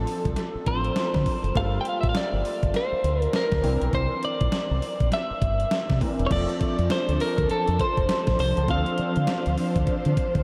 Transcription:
0.00 0.63 F3 medium
0.00 0.63 C4 medium
0.00 0.64 D4 medium
0.00 0.64 A4 medium
0.00 0.72 A4 medium
0.07 open hi-hat medium
0.25 0.34 C2 medium
0.25 kick medium
0.25 closed hi-hat medium
0.36 snare medium
0.36 closed hi-hat medium
0.55 muted fingered electric bass stroke soft
0.66 0.89 A1 loud
0.66 1.56 F3 medium
0.66 1.56 C4 soft
0.66 1.56 D4 soft
0.66 1.56 A4 medium
0.66 1.57 C5 medium
0.66 kick loud
0.66 closed hi-hat medium
0.84 closed hi-hat soft
0.96 snare loud
0.96 closed hi-hat medium
1.14 1.23 D3 loud
1.14 kick medium
1.14 snare medium
1.26 kick medium
1.26 open hi-hat medium
1.44 1.52 F#1 medium
1.44 closed hi-hat soft
1.55 1.78 G1 loud
1.55 3.59 G3 medium
1.55 3.59 A#3 medium
1.55 3.60 F4 medium
1.55 3.60 A4 medium
1.55 1.80 F5 loud
1.55 kick loud
1.55 closed hi-hat medium
1.81 1.89 G5 medium
1.85 2.00 F5 medium
1.85 closed hi-hat medium
2.01 2.12 A1 medium
2.01 2.09 E5 medium
2.01 kick loud
2.01 closed hi-hat soft
2.09 2.16 F5 medium
2.15 2.76 D5 medium
2.15 snare loud
2.15 closed hi-hat medium
2.33 2.42 G1 medium
2.45 open hi-hat medium
2.63 2.71 G1 medium
2.63 kick medium
2.63 closed hi-hat medium
2.74 3.22 C5 medium
2.74 snare medium
2.74 closed hi-hat medium
2.92 muted fingered electric bass stroke medium
3.04 3.26 D2 medium
3.04 closed hi-hat medium
3.22 3.35 A#4 medium
3.22 closed hi-hat soft
3.33 3.94 A#4 medium
3.33 snare loud
3.33 closed hi-hat medium
3.52 3.61 D2 medium
3.52 kick loud
3.52 snare medium
3.62 3.77 C2 loud
3.62 5.96 E3 medium
3.62 5.97 C4 medium
3.62 5.97 D4 medium
3.62 5.98 A#4 medium
3.62 open hi-hat medium
3.82 3.90 B1 loud
3.82 closed hi-hat medium
3.93 4.07 C2 loud
3.93 4.24 C5 medium
3.93 kick medium
3.93 closed hi-hat medium
4.23 5.13 D5 medium
4.23 closed hi-hat medium
4.41 4.50 A#1 medium
4.41 kick loud
4.41 closed hi-hat soft
4.52 muted fingered electric bass stroke soft
4.52 snare loud
4.52 closed hi-hat medium
4.71 4.79 C2 medium
4.82 open hi-hat medium
5.00 5.09 A#1 medium
5.00 kick medium
5.00 closed hi-hat medium
5.12 5.98 E5 medium
5.12 snare medium
5.12 closed hi-hat medium
5.31 muted fingered electric bass stroke soft
5.42 5.64 G1 medium
5.42 kick loud
5.42 closed hi-hat medium
5.60 closed hi-hat soft
5.71 snare loud
5.71 closed hi-hat medium
5.90 5.98 C3 medium
5.90 kick loud
5.90 snare medium
6.01 6.31 E3 medium
6.01 6.29 C4 medium
6.01 6.30 D4 medium
6.01 6.31 A#4 medium
6.01 kick medium
6.01 open hi-hat medium
6.19 6.28 E1 loud
6.19 closed hi-hat soft
6.27 8.64 F3 medium
6.27 6.31 C#5 medium
6.31 6.44 F1 loud
6.31 10.43 F3 medium
6.31 8.64 C4 medium
6.31 8.66 D4 medium
6.31 8.65 D4 medium
6.31 8.66 A4 medium
6.31 8.65 A4 medium
6.31 6.87 D5 medium
6.31 kick loud
6.31 closed hi-hat medium
6.31 crash medium
6.49 closed hi-hat soft
6.61 muted fingered electric bass stroke soft
6.61 kick loud
6.61 closed hi-hat medium
6.79 6.87 F2 loud
6.79 closed hi-hat soft
6.90 7.21 C5 medium
6.90 snare loud
6.90 closed hi-hat medium
7.09 7.17 D2 medium
7.09 closed hi-hat medium
7.20 7.50 A#4 medium
7.20 open hi-hat medium
7.38 7.47 D2 medium
7.38 kick medium
7.38 closed hi-hat medium
7.50 7.81 A4 medium
7.50 muted fingered electric bass stroke soft
7.50 closed hi-hat medium
7.68 7.77 F2 loud
7.68 closed hi-hat medium
7.79 8.39 C5 medium
7.79 kick loud
7.79 closed hi-hat medium
7.97 8.06 F1 medium
7.97 kick loud
7.97 closed hi-hat soft
8.09 snare loud
8.09 closed hi-hat medium
8.27 8.36 A1 medium
8.27 kick loud
8.27 snare medium
8.27 closed hi-hat soft
8.39 8.53 C2 medium
8.39 8.70 C5 medium
8.39 open hi-hat medium
8.57 8.66 C#2 medium
8.57 closed hi-hat medium
8.68 8.82 D2 loud
8.68 10.43 F3 medium
8.68 10.43 C4 medium
8.68 10.43 D4 medium
8.68 10.43 A4 medium
8.68 10.43 C5 medium
8.68 9.55 F5 loud
8.68 kick loud
8.68 closed hi-hat medium
8.86 closed hi-hat soft
8.98 muted fingered electric bass stroke medium
8.98 closed hi-hat medium
9.16 9.25 D3 medium
9.16 closed hi-hat soft
9.27 snare loud
9.27 closed hi-hat medium
9.46 9.55 D2 medium
9.46 closed hi-hat medium
9.58 open hi-hat medium
9.76 9.84 D2 medium
9.76 kick medium
9.76 closed hi-hat medium
9.87 muted fingered electric bass stroke soft
9.87 kick medium
9.87 closed hi-hat medium
10.05 10.14 D3 medium
10.05 closed hi-hat medium
10.17 kick loud
10.17 closed hi-hat medium
10.35 10.43 D2 medium
10.35 kick medium
10.35 closed hi-hat soft

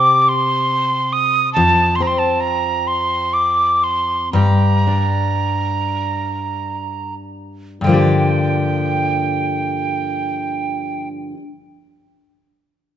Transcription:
0.00 1.55 C3 medium
0.00 2.00 C4 soft
0.00 1.56 G4 medium
0.00 0.22 D6 medium
0.22 0.30 D6 medium
0.29 1.14 C6 medium
1.13 1.52 D#6 medium
1.53 4.33 F2 medium
1.53 1.97 A5 medium
1.96 2.04 C6 medium
2.00 4.46 C4 medium
2.00 2.09 A#5 medium
2.07 2.20 C6 medium
2.18 2.42 A5 medium
2.40 2.89 A#5 medium
2.87 3.35 C6 medium
3.33 3.85 D6 medium
3.83 4.32 C6 medium
4.33 7.80 G2 medium
4.33 7.85 G4 medium
4.33 7.15 A#5 medium
4.87 7.91 D4 medium
7.81 11.31 G2 medium
7.81 11.34 D3 medium
7.81 11.08 G5 medium
7.87 11.37 F3 medium
7.87 11.39 A#3 medium
7.91 11.41 D4 medium
7.91 11.44 G4 medium

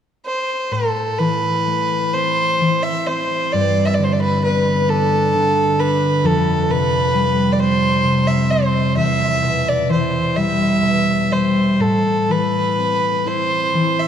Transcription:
0.26 0.73 C5 medium
0.71 3.59 A2 soft
0.71 1.20 A4 medium
1.18 2.60 E3 soft
1.18 2.15 B4 medium
1.67 5.00 A3 soft
2.13 3.07 C4 soft
2.13 2.84 C5 medium
2.61 3.59 E3 soft
2.83 3.08 E5 medium
3.07 4.49 C4 soft
3.07 3.53 C5 medium
3.52 6.31 G2 soft
3.52 3.87 D5 medium
3.85 3.95 E5 medium
3.94 4.05 D5 medium
3.98 5.34 D3 soft
4.04 4.14 C5 medium
4.12 4.21 D5 medium
4.20 4.43 B4 medium
4.43 6.75 B3 soft
4.43 4.90 B4 medium
4.88 5.79 D4 soft
4.88 5.81 A4 medium
5.35 6.31 D3 soft
5.79 8.59 D4 soft
5.79 6.27 B4 medium
6.24 9.02 F2 medium
6.24 6.72 A4 medium
6.69 8.03 C3 soft
6.69 7.54 B4 medium
7.15 9.02 G3 soft
7.52 7.61 D5 medium
7.59 8.49 C4 soft
7.59 8.29 C5 medium
8.04 9.02 C3 soft
8.27 8.52 E5 medium
8.49 9.48 C4 soft
8.49 8.96 C5 medium
8.96 11.84 E2 soft
8.96 9.70 E5 medium
9.42 10.81 B2 soft
9.68 9.90 D5 medium
9.89 10.87 E3 soft
9.89 10.37 C5 medium
10.36 11.30 G3 soft
10.36 11.33 E5 medium
10.82 11.84 B2 soft
11.31 11.84 G3 soft
11.31 11.82 C5 medium
11.80 14.08 A2 soft
11.80 12.32 A4 medium
12.28 13.73 E3 soft
12.28 13.29 B4 medium
12.78 14.08 C4 soft
13.26 14.08 E4 soft
13.26 14.01 C5 medium
13.74 14.08 E3 soft
13.99 14.08 E5 medium

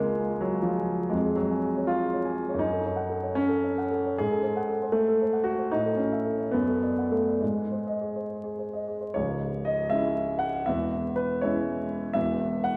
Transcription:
0.00 1.10 C#2 medium
0.00 0.41 G#3 medium
0.00 1.17 A#3 medium
0.00 0.19 F4 soft
0.00 0.12 G#4 soft
0.06 0.25 G#5 soft
0.19 0.38 F4 soft
0.30 0.62 G#4 soft
0.41 0.65 F#3 medium
0.52 0.72 F4 soft
0.62 1.13 F3 medium
0.62 0.84 G#4 soft
0.78 0.97 G#5 soft
0.89 1.09 F4 soft
0.99 1.13 G#4 soft
1.10 2.60 F2 medium
1.10 1.38 G#3 medium
1.25 1.47 G#4 soft
1.36 1.91 F#3 medium
1.36 1.60 C#5 soft
1.51 1.74 G#5 soft
1.64 1.86 G#4 soft
1.77 2.12 C#5 medium
1.87 2.63 F4 medium
2.02 2.23 G#4 medium
2.14 2.35 C#5 soft
2.25 2.47 G#5 medium
2.37 2.59 G#4 soft
2.49 2.63 C#5 soft
2.54 4.10 F#2 medium
2.59 3.36 D#4 medium
2.73 2.95 A4 soft
2.86 3.07 C#5 soft
2.96 3.19 F#5 soft
3.10 3.32 A4 soft
3.23 3.62 C#5 medium
3.35 4.18 C#4 medium
3.49 3.72 A4 medium
3.64 3.86 C#5 medium
3.78 4.01 F#5 soft
3.91 4.14 A4 soft
4.05 4.19 C#5 soft
4.18 5.69 G#2 medium
4.18 4.96 G#4 medium
4.31 4.53 A4 soft
4.43 4.65 C5 soft
4.56 4.78 F#5 medium
4.69 4.90 A4 soft
4.83 5.20 C5 soft
4.92 5.45 A3 medium
5.08 5.29 A4 medium
5.22 5.42 C5 soft
5.33 5.54 F#5 soft
5.44 5.71 F#4 medium
5.44 5.67 A4 soft
5.58 5.72 C5 soft
5.71 6.52 A2 medium
5.71 5.99 D#4 medium
5.86 6.07 A4 soft
5.96 6.53 C#4 medium
5.96 6.20 C#5 soft
6.12 6.35 E5 medium
6.25 6.48 A4 soft
6.38 6.53 C#5 soft
6.51 7.39 F#2 medium
6.51 7.10 B3 medium
6.68 6.91 A4 soft
6.82 7.06 D5 soft
6.98 7.21 F#5 soft
7.12 7.41 A3 medium
7.12 7.36 A4 soft
7.27 7.42 D5 soft
7.40 9.12 G#2 soft
7.40 8.28 G#3 medium
7.57 7.80 G#4 soft
7.72 7.95 C5 soft
7.87 8.09 D#5 soft
8.01 8.24 G#4 soft
8.16 8.57 C5 soft
8.44 8.67 G#4 soft
8.59 8.82 C5 soft
8.73 8.97 D#5 soft
8.88 9.10 G#4 soft
9.01 9.15 C5 soft
9.14 10.63 C#1 medium
9.14 10.63 C#2 medium
9.14 9.66 C#5 medium
9.65 9.91 D#5 medium
9.90 10.62 G#3 medium
9.90 10.62 C#4 medium
9.90 10.62 E4 medium
9.90 10.40 E5 medium
10.39 10.65 F#5 medium
10.66 12.11 E1 soft
10.66 12.11 E2 medium
10.66 11.16 E5 medium
11.16 11.41 B4 medium
11.41 12.11 G#3 medium
11.41 12.12 C#4 medium
11.41 12.12 E4 medium
11.41 12.15 C#5 medium
12.14 12.77 E1 medium
12.14 12.77 E2 medium
12.14 12.64 E5 medium
12.64 12.77 F#5 medium

